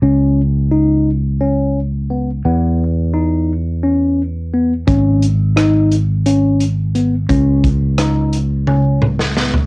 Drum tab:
HH |--------------|--------------|x-x-x-x-x-x-x-|x-x-x-x-------|
SD |--------------|--------------|----r---------|----r------oo-|
T1 |--------------|--------------|--------------|--------o-----|
T2 |--------------|--------------|--------------|----------o---|
FT |--------------|--------------|--------------|-------------o|
BD |--------------|--------------|o-------------|o-o-----------|